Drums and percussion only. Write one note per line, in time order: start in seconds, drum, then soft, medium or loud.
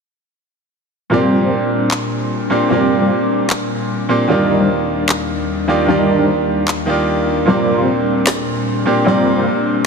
1.91 clap medium
3.50 clap medium
5.09 clap medium
6.68 clap medium
8.27 snare loud
8.27 clap medium